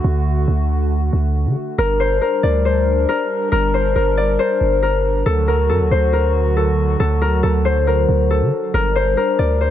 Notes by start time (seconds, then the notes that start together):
Already playing: D3 A3 F#4
0.04 D2
0.48 D2
1.13 D2
1.46 D3
1.78 G1 G3 D4 A#4
2.00 C5
2.21 A#4
2.43 D2 D5
2.65 C5
3.09 A#4
3.52 G1 A#4
3.74 C5
3.96 G1 A#4
4.17 D5
4.39 C5
4.61 G1
4.83 A#4
5.26 D2 D3 F#3 F#4 A4
5.48 A#4
5.69 F#2 A4
5.80 D2
5.91 D2 C5
6.13 A#4
6.57 A4
7.00 D2 A4
7.22 A#4
7.43 D2 A4
7.65 C5
7.87 A#4
8.09 D2
8.31 A4
8.41 D3
8.74 G1 G3 D4 A#4
8.96 C5
9.17 A#4
9.39 D2 D5
9.61 C5